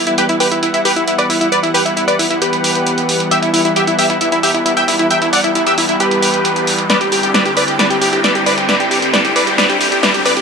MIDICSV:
0, 0, Header, 1, 5, 480
1, 0, Start_track
1, 0, Key_signature, 1, "minor"
1, 0, Tempo, 447761
1, 1633, Time_signature, 4, 2, 24, 8
1, 11165, End_track
2, 0, Start_track
2, 0, Title_t, "Supersaw synth"
2, 0, Program_c, 0, 81
2, 75, Note_on_c, 0, 64, 61
2, 150, Note_off_c, 0, 64, 0
2, 194, Note_on_c, 0, 71, 91
2, 195, Note_on_c, 0, 67, 76
2, 270, Note_off_c, 0, 67, 0
2, 270, Note_off_c, 0, 71, 0
2, 314, Note_on_c, 0, 64, 64
2, 390, Note_off_c, 0, 64, 0
2, 432, Note_on_c, 0, 67, 78
2, 432, Note_on_c, 0, 71, 92
2, 509, Note_off_c, 0, 67, 0
2, 509, Note_off_c, 0, 71, 0
2, 553, Note_on_c, 0, 64, 62
2, 629, Note_off_c, 0, 64, 0
2, 674, Note_on_c, 0, 64, 62
2, 750, Note_off_c, 0, 64, 0
2, 794, Note_on_c, 0, 64, 65
2, 870, Note_off_c, 0, 64, 0
2, 912, Note_on_c, 0, 67, 79
2, 912, Note_on_c, 0, 71, 92
2, 989, Note_off_c, 0, 67, 0
2, 989, Note_off_c, 0, 71, 0
2, 1033, Note_on_c, 0, 64, 62
2, 1109, Note_off_c, 0, 64, 0
2, 1153, Note_on_c, 0, 64, 61
2, 1230, Note_off_c, 0, 64, 0
2, 1270, Note_on_c, 0, 71, 78
2, 1270, Note_on_c, 0, 74, 95
2, 1348, Note_off_c, 0, 71, 0
2, 1348, Note_off_c, 0, 74, 0
2, 1390, Note_on_c, 0, 64, 63
2, 1468, Note_off_c, 0, 64, 0
2, 1509, Note_on_c, 0, 64, 60
2, 1588, Note_off_c, 0, 64, 0
2, 1628, Note_on_c, 0, 71, 76
2, 1628, Note_on_c, 0, 74, 87
2, 1707, Note_off_c, 0, 71, 0
2, 1707, Note_off_c, 0, 74, 0
2, 1748, Note_on_c, 0, 64, 63
2, 1827, Note_off_c, 0, 64, 0
2, 1868, Note_on_c, 0, 67, 77
2, 1868, Note_on_c, 0, 71, 92
2, 1947, Note_off_c, 0, 67, 0
2, 1947, Note_off_c, 0, 71, 0
2, 1989, Note_on_c, 0, 64, 62
2, 2067, Note_off_c, 0, 64, 0
2, 2108, Note_on_c, 0, 64, 64
2, 2187, Note_off_c, 0, 64, 0
2, 2227, Note_on_c, 0, 71, 78
2, 2227, Note_on_c, 0, 74, 95
2, 2306, Note_off_c, 0, 74, 0
2, 2307, Note_off_c, 0, 71, 0
2, 2348, Note_on_c, 0, 64, 64
2, 2427, Note_off_c, 0, 64, 0
2, 2471, Note_on_c, 0, 64, 66
2, 2548, Note_off_c, 0, 64, 0
2, 2590, Note_on_c, 0, 67, 81
2, 2590, Note_on_c, 0, 71, 98
2, 3455, Note_off_c, 0, 67, 0
2, 3455, Note_off_c, 0, 71, 0
2, 3551, Note_on_c, 0, 76, 100
2, 3552, Note_on_c, 0, 67, 76
2, 3629, Note_off_c, 0, 67, 0
2, 3629, Note_off_c, 0, 76, 0
2, 3669, Note_on_c, 0, 64, 62
2, 3748, Note_off_c, 0, 64, 0
2, 3791, Note_on_c, 0, 64, 65
2, 3868, Note_off_c, 0, 64, 0
2, 3912, Note_on_c, 0, 64, 61
2, 3989, Note_off_c, 0, 64, 0
2, 4034, Note_on_c, 0, 67, 78
2, 4034, Note_on_c, 0, 76, 92
2, 4110, Note_off_c, 0, 67, 0
2, 4110, Note_off_c, 0, 76, 0
2, 4154, Note_on_c, 0, 64, 64
2, 4230, Note_off_c, 0, 64, 0
2, 4274, Note_on_c, 0, 67, 76
2, 4274, Note_on_c, 0, 76, 95
2, 4350, Note_off_c, 0, 67, 0
2, 4350, Note_off_c, 0, 76, 0
2, 4394, Note_on_c, 0, 64, 63
2, 4470, Note_off_c, 0, 64, 0
2, 4515, Note_on_c, 0, 64, 63
2, 4590, Note_off_c, 0, 64, 0
2, 4632, Note_on_c, 0, 64, 65
2, 4709, Note_off_c, 0, 64, 0
2, 4752, Note_on_c, 0, 67, 79
2, 4752, Note_on_c, 0, 76, 97
2, 4829, Note_off_c, 0, 67, 0
2, 4829, Note_off_c, 0, 76, 0
2, 4871, Note_on_c, 0, 64, 60
2, 4949, Note_off_c, 0, 64, 0
2, 4991, Note_on_c, 0, 64, 64
2, 5068, Note_off_c, 0, 64, 0
2, 5111, Note_on_c, 0, 76, 77
2, 5111, Note_on_c, 0, 79, 95
2, 5188, Note_off_c, 0, 79, 0
2, 5189, Note_off_c, 0, 76, 0
2, 5232, Note_on_c, 0, 64, 64
2, 5309, Note_off_c, 0, 64, 0
2, 5352, Note_on_c, 0, 64, 61
2, 5429, Note_off_c, 0, 64, 0
2, 5474, Note_on_c, 0, 76, 73
2, 5475, Note_on_c, 0, 79, 88
2, 5550, Note_off_c, 0, 76, 0
2, 5550, Note_off_c, 0, 79, 0
2, 5594, Note_on_c, 0, 64, 65
2, 5670, Note_off_c, 0, 64, 0
2, 5713, Note_on_c, 0, 74, 78
2, 5714, Note_on_c, 0, 78, 99
2, 5789, Note_off_c, 0, 74, 0
2, 5790, Note_off_c, 0, 78, 0
2, 5833, Note_on_c, 0, 64, 61
2, 5910, Note_off_c, 0, 64, 0
2, 5954, Note_on_c, 0, 64, 66
2, 6030, Note_off_c, 0, 64, 0
2, 6074, Note_on_c, 0, 76, 94
2, 6075, Note_on_c, 0, 67, 78
2, 6150, Note_off_c, 0, 67, 0
2, 6150, Note_off_c, 0, 76, 0
2, 6195, Note_on_c, 0, 64, 63
2, 6271, Note_off_c, 0, 64, 0
2, 6315, Note_on_c, 0, 64, 66
2, 6390, Note_off_c, 0, 64, 0
2, 6436, Note_on_c, 0, 67, 80
2, 6437, Note_on_c, 0, 71, 97
2, 7298, Note_off_c, 0, 67, 0
2, 7299, Note_off_c, 0, 71, 0
2, 7396, Note_on_c, 0, 71, 69
2, 7396, Note_on_c, 0, 74, 87
2, 7471, Note_off_c, 0, 71, 0
2, 7471, Note_off_c, 0, 74, 0
2, 7514, Note_on_c, 0, 67, 59
2, 7590, Note_off_c, 0, 67, 0
2, 7636, Note_on_c, 0, 67, 60
2, 7711, Note_off_c, 0, 67, 0
2, 7756, Note_on_c, 0, 67, 60
2, 7831, Note_off_c, 0, 67, 0
2, 7874, Note_on_c, 0, 71, 69
2, 7874, Note_on_c, 0, 74, 84
2, 7950, Note_off_c, 0, 71, 0
2, 7950, Note_off_c, 0, 74, 0
2, 7995, Note_on_c, 0, 67, 60
2, 8070, Note_off_c, 0, 67, 0
2, 8114, Note_on_c, 0, 74, 84
2, 8115, Note_on_c, 0, 71, 74
2, 8190, Note_off_c, 0, 71, 0
2, 8190, Note_off_c, 0, 74, 0
2, 8233, Note_on_c, 0, 67, 59
2, 8310, Note_off_c, 0, 67, 0
2, 8353, Note_on_c, 0, 71, 71
2, 8353, Note_on_c, 0, 74, 90
2, 8429, Note_off_c, 0, 71, 0
2, 8429, Note_off_c, 0, 74, 0
2, 8474, Note_on_c, 0, 67, 60
2, 8550, Note_off_c, 0, 67, 0
2, 8593, Note_on_c, 0, 67, 61
2, 8669, Note_off_c, 0, 67, 0
2, 8714, Note_on_c, 0, 67, 58
2, 8790, Note_off_c, 0, 67, 0
2, 8835, Note_on_c, 0, 71, 69
2, 8835, Note_on_c, 0, 74, 79
2, 8910, Note_off_c, 0, 74, 0
2, 8911, Note_off_c, 0, 71, 0
2, 8954, Note_on_c, 0, 67, 62
2, 9030, Note_off_c, 0, 67, 0
2, 9074, Note_on_c, 0, 74, 89
2, 9075, Note_on_c, 0, 71, 74
2, 9150, Note_off_c, 0, 71, 0
2, 9150, Note_off_c, 0, 74, 0
2, 9194, Note_on_c, 0, 67, 58
2, 9270, Note_off_c, 0, 67, 0
2, 9315, Note_on_c, 0, 71, 73
2, 9315, Note_on_c, 0, 74, 89
2, 9390, Note_off_c, 0, 74, 0
2, 9391, Note_off_c, 0, 71, 0
2, 9434, Note_on_c, 0, 67, 60
2, 9510, Note_off_c, 0, 67, 0
2, 9551, Note_on_c, 0, 67, 63
2, 9629, Note_off_c, 0, 67, 0
2, 9673, Note_on_c, 0, 67, 60
2, 9749, Note_off_c, 0, 67, 0
2, 9793, Note_on_c, 0, 71, 71
2, 9793, Note_on_c, 0, 74, 87
2, 9869, Note_off_c, 0, 71, 0
2, 9869, Note_off_c, 0, 74, 0
2, 9913, Note_on_c, 0, 67, 63
2, 9990, Note_off_c, 0, 67, 0
2, 10032, Note_on_c, 0, 71, 73
2, 10033, Note_on_c, 0, 74, 88
2, 10109, Note_off_c, 0, 71, 0
2, 10109, Note_off_c, 0, 74, 0
2, 10152, Note_on_c, 0, 67, 62
2, 10229, Note_off_c, 0, 67, 0
2, 10271, Note_on_c, 0, 71, 73
2, 10271, Note_on_c, 0, 74, 94
2, 10348, Note_off_c, 0, 71, 0
2, 10348, Note_off_c, 0, 74, 0
2, 10393, Note_on_c, 0, 67, 62
2, 10470, Note_off_c, 0, 67, 0
2, 10513, Note_on_c, 0, 67, 63
2, 10589, Note_off_c, 0, 67, 0
2, 10634, Note_on_c, 0, 67, 61
2, 10710, Note_off_c, 0, 67, 0
2, 10753, Note_on_c, 0, 74, 85
2, 10754, Note_on_c, 0, 71, 72
2, 10830, Note_off_c, 0, 71, 0
2, 10830, Note_off_c, 0, 74, 0
2, 10873, Note_on_c, 0, 67, 64
2, 10949, Note_off_c, 0, 67, 0
2, 10993, Note_on_c, 0, 74, 93
2, 10994, Note_on_c, 0, 71, 71
2, 11070, Note_off_c, 0, 71, 0
2, 11070, Note_off_c, 0, 74, 0
2, 11115, Note_on_c, 0, 67, 60
2, 11165, Note_off_c, 0, 67, 0
2, 11165, End_track
3, 0, Start_track
3, 0, Title_t, "Supersaw synth"
3, 0, Program_c, 1, 81
3, 0, Note_on_c, 1, 52, 80
3, 0, Note_on_c, 1, 55, 72
3, 0, Note_on_c, 1, 59, 71
3, 0, Note_on_c, 1, 78, 86
3, 7350, Note_off_c, 1, 52, 0
3, 7350, Note_off_c, 1, 59, 0
3, 7350, Note_off_c, 1, 78, 0
3, 7392, Note_on_c, 1, 50, 78
3, 7392, Note_on_c, 1, 60, 73
3, 7393, Note_on_c, 1, 64, 85
3, 11165, Note_off_c, 1, 50, 0
3, 11165, Note_off_c, 1, 55, 0
3, 11165, Note_off_c, 1, 60, 0
3, 11165, Note_off_c, 1, 64, 0
3, 11165, End_track
4, 0, Start_track
4, 0, Title_t, "Riser"
4, 0, Program_c, 2, 103
4, 0, Note_on_c, 2, 60, 77
4, 11165, Note_off_c, 2, 60, 0
4, 11165, End_track
5, 0, Start_track
5, 0, Title_t, "Drums"
5, 71, Note_on_c, 9, 42, 57
5, 179, Note_off_c, 9, 42, 0
5, 192, Note_on_c, 9, 42, 78
5, 299, Note_off_c, 9, 42, 0
5, 312, Note_on_c, 9, 42, 53
5, 419, Note_off_c, 9, 42, 0
5, 431, Note_on_c, 9, 46, 104
5, 539, Note_off_c, 9, 46, 0
5, 553, Note_on_c, 9, 42, 52
5, 660, Note_off_c, 9, 42, 0
5, 673, Note_on_c, 9, 42, 76
5, 780, Note_off_c, 9, 42, 0
5, 793, Note_on_c, 9, 42, 53
5, 900, Note_off_c, 9, 42, 0
5, 913, Note_on_c, 9, 46, 105
5, 1020, Note_off_c, 9, 46, 0
5, 1033, Note_on_c, 9, 42, 51
5, 1140, Note_off_c, 9, 42, 0
5, 1153, Note_on_c, 9, 42, 85
5, 1260, Note_off_c, 9, 42, 0
5, 1273, Note_on_c, 9, 42, 53
5, 1380, Note_off_c, 9, 42, 0
5, 1393, Note_on_c, 9, 46, 104
5, 1500, Note_off_c, 9, 46, 0
5, 1512, Note_on_c, 9, 42, 54
5, 1620, Note_off_c, 9, 42, 0
5, 1633, Note_on_c, 9, 42, 77
5, 1740, Note_off_c, 9, 42, 0
5, 1753, Note_on_c, 9, 42, 52
5, 1860, Note_off_c, 9, 42, 0
5, 1872, Note_on_c, 9, 46, 105
5, 1979, Note_off_c, 9, 46, 0
5, 1992, Note_on_c, 9, 42, 55
5, 2099, Note_off_c, 9, 42, 0
5, 2112, Note_on_c, 9, 42, 76
5, 2219, Note_off_c, 9, 42, 0
5, 2232, Note_on_c, 9, 42, 52
5, 2339, Note_off_c, 9, 42, 0
5, 2352, Note_on_c, 9, 46, 112
5, 2459, Note_off_c, 9, 46, 0
5, 2472, Note_on_c, 9, 42, 49
5, 2579, Note_off_c, 9, 42, 0
5, 2591, Note_on_c, 9, 42, 78
5, 2698, Note_off_c, 9, 42, 0
5, 2712, Note_on_c, 9, 42, 54
5, 2819, Note_off_c, 9, 42, 0
5, 2831, Note_on_c, 9, 46, 109
5, 2938, Note_off_c, 9, 46, 0
5, 2952, Note_on_c, 9, 42, 49
5, 3059, Note_off_c, 9, 42, 0
5, 3071, Note_on_c, 9, 42, 81
5, 3179, Note_off_c, 9, 42, 0
5, 3192, Note_on_c, 9, 42, 50
5, 3299, Note_off_c, 9, 42, 0
5, 3311, Note_on_c, 9, 46, 109
5, 3419, Note_off_c, 9, 46, 0
5, 3432, Note_on_c, 9, 42, 52
5, 3539, Note_off_c, 9, 42, 0
5, 3553, Note_on_c, 9, 42, 74
5, 3660, Note_off_c, 9, 42, 0
5, 3672, Note_on_c, 9, 42, 50
5, 3780, Note_off_c, 9, 42, 0
5, 3792, Note_on_c, 9, 46, 107
5, 3899, Note_off_c, 9, 46, 0
5, 3912, Note_on_c, 9, 42, 51
5, 4020, Note_off_c, 9, 42, 0
5, 4033, Note_on_c, 9, 42, 76
5, 4140, Note_off_c, 9, 42, 0
5, 4153, Note_on_c, 9, 42, 51
5, 4260, Note_off_c, 9, 42, 0
5, 4273, Note_on_c, 9, 46, 109
5, 4380, Note_off_c, 9, 46, 0
5, 4394, Note_on_c, 9, 42, 49
5, 4501, Note_off_c, 9, 42, 0
5, 4512, Note_on_c, 9, 42, 73
5, 4620, Note_off_c, 9, 42, 0
5, 4633, Note_on_c, 9, 42, 53
5, 4740, Note_off_c, 9, 42, 0
5, 4752, Note_on_c, 9, 46, 110
5, 4859, Note_off_c, 9, 46, 0
5, 4873, Note_on_c, 9, 42, 49
5, 4980, Note_off_c, 9, 42, 0
5, 4993, Note_on_c, 9, 42, 78
5, 5101, Note_off_c, 9, 42, 0
5, 5113, Note_on_c, 9, 42, 50
5, 5220, Note_off_c, 9, 42, 0
5, 5232, Note_on_c, 9, 46, 110
5, 5339, Note_off_c, 9, 46, 0
5, 5353, Note_on_c, 9, 42, 49
5, 5460, Note_off_c, 9, 42, 0
5, 5473, Note_on_c, 9, 42, 70
5, 5580, Note_off_c, 9, 42, 0
5, 5592, Note_on_c, 9, 42, 50
5, 5700, Note_off_c, 9, 42, 0
5, 5712, Note_on_c, 9, 46, 104
5, 5819, Note_off_c, 9, 46, 0
5, 5833, Note_on_c, 9, 42, 51
5, 5940, Note_off_c, 9, 42, 0
5, 5953, Note_on_c, 9, 42, 76
5, 6060, Note_off_c, 9, 42, 0
5, 6073, Note_on_c, 9, 42, 49
5, 6181, Note_off_c, 9, 42, 0
5, 6193, Note_on_c, 9, 46, 110
5, 6300, Note_off_c, 9, 46, 0
5, 6313, Note_on_c, 9, 42, 47
5, 6420, Note_off_c, 9, 42, 0
5, 6433, Note_on_c, 9, 42, 73
5, 6540, Note_off_c, 9, 42, 0
5, 6554, Note_on_c, 9, 42, 51
5, 6661, Note_off_c, 9, 42, 0
5, 6673, Note_on_c, 9, 46, 109
5, 6780, Note_off_c, 9, 46, 0
5, 6793, Note_on_c, 9, 42, 46
5, 6900, Note_off_c, 9, 42, 0
5, 6913, Note_on_c, 9, 42, 78
5, 7021, Note_off_c, 9, 42, 0
5, 7034, Note_on_c, 9, 42, 48
5, 7141, Note_off_c, 9, 42, 0
5, 7153, Note_on_c, 9, 46, 108
5, 7261, Note_off_c, 9, 46, 0
5, 7273, Note_on_c, 9, 42, 48
5, 7380, Note_off_c, 9, 42, 0
5, 7393, Note_on_c, 9, 38, 47
5, 7393, Note_on_c, 9, 42, 74
5, 7500, Note_off_c, 9, 38, 0
5, 7500, Note_off_c, 9, 42, 0
5, 7513, Note_on_c, 9, 42, 49
5, 7620, Note_off_c, 9, 42, 0
5, 7633, Note_on_c, 9, 46, 105
5, 7740, Note_off_c, 9, 46, 0
5, 7753, Note_on_c, 9, 42, 54
5, 7860, Note_off_c, 9, 42, 0
5, 7872, Note_on_c, 9, 38, 51
5, 7872, Note_on_c, 9, 42, 76
5, 7979, Note_off_c, 9, 38, 0
5, 7979, Note_off_c, 9, 42, 0
5, 7992, Note_on_c, 9, 42, 51
5, 8099, Note_off_c, 9, 42, 0
5, 8112, Note_on_c, 9, 46, 104
5, 8219, Note_off_c, 9, 46, 0
5, 8232, Note_on_c, 9, 42, 51
5, 8339, Note_off_c, 9, 42, 0
5, 8353, Note_on_c, 9, 38, 53
5, 8353, Note_on_c, 9, 42, 73
5, 8460, Note_off_c, 9, 38, 0
5, 8460, Note_off_c, 9, 42, 0
5, 8474, Note_on_c, 9, 42, 50
5, 8581, Note_off_c, 9, 42, 0
5, 8593, Note_on_c, 9, 46, 107
5, 8700, Note_off_c, 9, 46, 0
5, 8713, Note_on_c, 9, 42, 48
5, 8820, Note_off_c, 9, 42, 0
5, 8833, Note_on_c, 9, 38, 58
5, 8833, Note_on_c, 9, 42, 77
5, 8941, Note_off_c, 9, 38, 0
5, 8941, Note_off_c, 9, 42, 0
5, 8953, Note_on_c, 9, 42, 49
5, 9060, Note_off_c, 9, 42, 0
5, 9073, Note_on_c, 9, 46, 104
5, 9180, Note_off_c, 9, 46, 0
5, 9193, Note_on_c, 9, 42, 50
5, 9301, Note_off_c, 9, 42, 0
5, 9313, Note_on_c, 9, 38, 58
5, 9313, Note_on_c, 9, 42, 74
5, 9420, Note_off_c, 9, 38, 0
5, 9420, Note_off_c, 9, 42, 0
5, 9434, Note_on_c, 9, 42, 50
5, 9541, Note_off_c, 9, 42, 0
5, 9553, Note_on_c, 9, 46, 96
5, 9660, Note_off_c, 9, 46, 0
5, 9673, Note_on_c, 9, 42, 54
5, 9780, Note_off_c, 9, 42, 0
5, 9793, Note_on_c, 9, 38, 62
5, 9793, Note_on_c, 9, 42, 80
5, 9900, Note_off_c, 9, 38, 0
5, 9900, Note_off_c, 9, 42, 0
5, 9913, Note_on_c, 9, 42, 53
5, 10020, Note_off_c, 9, 42, 0
5, 10033, Note_on_c, 9, 46, 105
5, 10140, Note_off_c, 9, 46, 0
5, 10152, Note_on_c, 9, 42, 50
5, 10260, Note_off_c, 9, 42, 0
5, 10273, Note_on_c, 9, 38, 64
5, 10273, Note_on_c, 9, 42, 78
5, 10380, Note_off_c, 9, 38, 0
5, 10380, Note_off_c, 9, 42, 0
5, 10394, Note_on_c, 9, 42, 54
5, 10501, Note_off_c, 9, 42, 0
5, 10513, Note_on_c, 9, 46, 102
5, 10620, Note_off_c, 9, 46, 0
5, 10634, Note_on_c, 9, 42, 51
5, 10741, Note_off_c, 9, 42, 0
5, 10753, Note_on_c, 9, 38, 71
5, 10753, Note_on_c, 9, 42, 81
5, 10861, Note_off_c, 9, 38, 0
5, 10861, Note_off_c, 9, 42, 0
5, 10874, Note_on_c, 9, 42, 50
5, 10981, Note_off_c, 9, 42, 0
5, 10994, Note_on_c, 9, 46, 102
5, 11101, Note_off_c, 9, 46, 0
5, 11113, Note_on_c, 9, 42, 53
5, 11165, Note_off_c, 9, 42, 0
5, 11165, End_track
0, 0, End_of_file